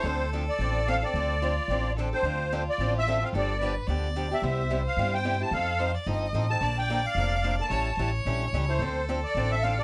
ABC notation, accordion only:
X:1
M:4/4
L:1/8
Q:"Swing" 1/4=219
K:Dm
V:1 name="Accordion"
c2 z d3 f d- | d6 z c- | c3 d2 e2 f | d3 z4 e- |
e3 f2 g2 a | f3 z4 a- | a g2 f4 a- | a3 z4 c- |
c2 z d2 e f d |]